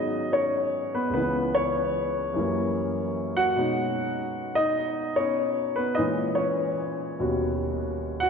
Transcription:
Already playing: G#2 D#3 F#3 G#3 B3 C#4 D#4 F#4 G#4 D#5
0.32 C#4 C#5
0.95 B3 B4
1.10 C#2 C#3
1.14 E3 B3 B4
1.21 B3
1.55 C#4 C#5
2.34 F#2 E3 G3
2.39 A#3
3.37 F#4 F#5
3.56 B2 G#3 C#4 D#4
4.55 D#4 D#5
5.16 B3 C#4 D#4 C#5
5.76 B3 B4
5.95 A#2 G#3 D#4 D#5
5.99 E3 C#4
6.35 C#4 C#5
7.20 D#2 B2 G3 C#4 F#4
8.20 F#4 F#5

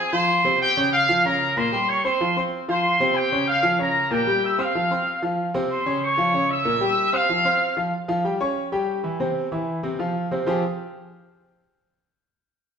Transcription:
0.12 F3 F4 C5 F5 C6
0.44 C3 C4 C5
0.61 G4 G5
0.77 C#3 C#4 C#5
0.93 F5
1.09 F3 F4 F5
1.24 C#3 C#4 A#4 C#5 A#5
1.56 A#2 A#3 A#4 C5 C6
1.72 G3 G4 G5
1.88 C#5 C#6
2.04 C4 C5 C6
2.20 F3 F4 F5
2.37 C4 C5 C6
2.68 F3 F4 C5 F5 C6
3.00 C3 C4 C5
3.16 G4 G5
3.32 C#3 C#4 C#5
3.47 F5
3.63 F3 F4 F5
3.79 C#3 C#4 A#4 C#5 A#5
4.11 A#2 A#3 G4 A#4 G5
4.27 G3 G4 G5
4.44 E5 E6
4.58 C4 C5 F5 C6
4.75 F3 F4 F5
4.91 C4 C5 C6
5.22 F3 F4 F5
5.54 C3 C4 C5
5.71 C5 C6
5.86 C#3 C#4 C#5
6.02 C#5 C#6
6.18 F3 F4 F5
6.33 C#3 C#4 C#5
6.49 E5 E6
6.65 A#2 A#3 A#4
6.80 G3 G4 G5
7.13 C4 C5 F5 C6
7.29 F3 F4 F5
7.45 C4 C5 C6
7.77 F3 F4 F5
8.08 F3 F4 F5
8.24 G3 G4 G5
8.40 C#4 C#5 C#6
8.72 G3 G4 G5
9.04 E3 E4 E5
9.20 C3 C4 C5
9.52 E3 E4 E5
9.83 C3 C4 C5
9.99 F3 F4 F5
10.31 C3 C4 C5
10.46 F3 C4 F4 G4 G#4 C5

